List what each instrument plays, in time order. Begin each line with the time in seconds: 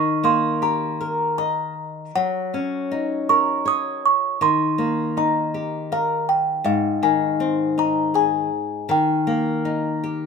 Already playing: nylon-string guitar D#3, music box C#6
0.24 nylon-string guitar A#3, music box C6
0.62 nylon-string guitar G4, music box A#5
1.01 nylon-string guitar A#4
1.38 nylon-string guitar D#5, music box A#5
2.15 nylon-string guitar F#3, music box F#5
2.54 nylon-string guitar C#4
2.92 nylon-string guitar D#4
3.29 nylon-string guitar A#4, music box C#6
3.65 nylon-string guitar C#5, music box D#6
4.06 music box C#6
4.41 nylon-string guitar D#3, music box C6
4.78 nylon-string guitar A#3
5.17 nylon-string guitar D#4, music box A#5
5.54 nylon-string guitar G4
5.92 nylon-string guitar A#4, music box F5
6.29 music box G5
6.64 nylon-string guitar G#2, music box F5
7.03 nylon-string guitar D#3, music box G#5
7.40 nylon-string guitar C4
7.78 nylon-string guitar D#4, music box A#5
8.14 nylon-string guitar G#4, music box G#5
8.89 nylon-string guitar D#3, music box G5
9.27 nylon-string guitar A#3
9.65 nylon-string guitar D#4
10.04 nylon-string guitar G4